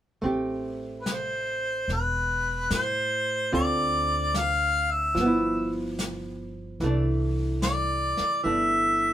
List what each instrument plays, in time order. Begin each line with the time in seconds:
0.22 upright bass A1, hollow-body jazz guitar A3 C4 G4, brush sweep
1.02 harmonica B4
1.06 snare, hi-hat pedal
1.12 harmonica C5
1.88 upright bass E1, brush sweep, snare
1.93 harmonica B4
2.70 upright bass A2, harmonica C5, snare, hi-hat pedal
3.52 upright bass D2, hollow-body jazz guitar D3 C4 F4 A4, harmonica D5, brush sweep
4.34 harmonica F5, snare, hi-hat pedal
4.91 harmonica E5
5.15 upright bass G1, hollow-body jazz guitar F3, brush sweep, snare
5.21 hollow-body jazz guitar B3
5.26 hollow-body jazz guitar E4
5.99 snare, hi-hat pedal
6.80 upright bass C2, hollow-body jazz guitar E3 A3, brush sweep, snare
6.86 hollow-body jazz guitar D4
7.62 harmonica D5, snare, hi-hat pedal
8.17 muted upright bass stroke, snare
8.44 upright bass G1, hollow-body jazz guitar E3 A3 D4, harmonica E5, brush sweep